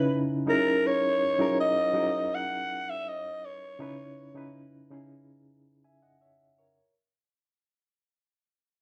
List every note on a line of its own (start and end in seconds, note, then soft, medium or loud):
0.00 0.50 C#3 medium
0.00 0.47 C#4 medium
0.00 0.47 D#4 medium
0.00 0.48 E4 medium
0.00 0.22 B4 medium
0.00 0.50 B4 loud
0.46 1.21 F#3 medium
0.46 1.21 C#4 medium
0.46 1.21 D#4 medium
0.46 1.22 E4 medium
0.46 1.22 G#4 medium
0.46 1.22 A#4 medium
0.46 0.88 A#4 medium
0.87 1.60 C#5 loud
1.39 1.73 F#3 medium
1.39 1.73 C#4 medium
1.39 1.73 D#4 medium
1.39 1.74 E4 medium
1.39 1.74 G#4 medium
1.39 1.74 A#4 medium
1.60 2.36 D#5 loud
1.94 2.84 F#3 medium
1.94 2.84 C#4 medium
1.94 2.85 D#4 medium
1.94 2.85 E4 medium
1.94 2.85 G#4 medium
1.94 2.85 A#4 medium
2.34 2.91 F#5 loud
2.90 3.10 E5 medium
3.08 3.47 D#5 loud
3.45 4.55 C#5 medium
3.79 4.13 C#3 loud
3.79 4.14 C#4 medium
3.79 4.14 D#4 medium
3.79 4.14 E4 medium
3.79 4.15 B4 loud
4.35 4.69 C#3 medium
4.35 4.69 C#4 medium
4.35 4.69 D#4 medium
4.35 4.70 E4 medium
4.35 4.70 B4 medium
4.91 5.36 C#3 medium
4.91 5.36 C#4 medium
4.91 5.36 D#4 medium
4.91 5.37 E4 medium
4.91 5.37 G#4 medium
5.84 6.02 E5 medium
5.84 6.02 G#5 medium
6.02 6.21 D#5 medium
6.02 6.20 F#5 medium
6.21 6.57 C#5 medium
6.21 6.56 E5 medium
6.58 6.94 A#4 medium
6.58 6.93 C#5 medium